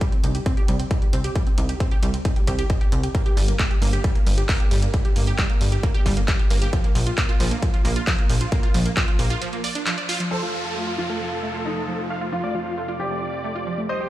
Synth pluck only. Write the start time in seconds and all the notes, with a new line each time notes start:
0.01 G3
0.12 C4
0.23 D#4
0.35 G4
0.46 C4
0.57 G4
0.68 G3
0.80 C4
0.91 D#4
1.02 G4
1.13 C4
1.24 G4
1.36 G3
1.47 C4
1.58 D#4
1.69 G4
1.80 C4
1.92 G4
2.03 G3
2.14 C4
2.25 D#4
2.36 G4
2.48 G4
2.59 G4
2.70 D#5
2.81 G4
2.92 C4
3.04 G4
3.15 A#3
3.26 G4
3.37 G3
3.48 A#3
3.59 G3
3.71 G4
3.82 A#3
3.93 G4
4.04 G3
4.15 A#3
4.26 G3
4.38 G4
4.49 A#3
4.60 G4
4.71 G3
4.83 A#3
4.94 G3
5.05 G4
5.16 A#3
5.27 G4
5.39 G3
5.50 A#3
5.61 G3
5.72 G4
5.83 A#3
5.94 G4
6.06 G3
6.17 A#3
6.28 G3
6.39 G4
6.51 A#3
6.62 G4
6.73 F3
6.84 A#3
6.95 F3
7.07 F4
7.18 A#3
7.29 F4
7.40 F3
7.51 A#3
7.62 F3
7.74 F4
7.85 A#3
7.96 F4
8.07 F3
8.19 A#3
8.30 F3
8.41 F4
8.52 A#3
8.63 F4
8.74 F3
8.86 A#3
8.97 F3
9.08 F4
9.19 A#3
9.30 F4
9.42 F3
9.53 A#3
9.64 D5
9.75 D4
9.87 F3
9.98 D5
10.09 F4
10.20 F3
10.31 F3
10.42 A3
10.54 F3
10.65 F4
10.76 A3
10.87 F4
10.98 F3
11.10 A3
11.21 F3
11.32 F4
11.43 A3
11.54 F4
11.65 F3
11.77 A3
11.88 F3
11.99 F4
12.10 A3
12.21 F4
12.32 F3
12.44 A3
12.55 F3
12.66 F4
12.77 A3
12.88 F4
12.99 F3
13.11 A3
13.22 F3
13.33 F4
13.44 A3
13.55 F4
13.67 F3
13.78 A3
13.89 G3
14.00 G4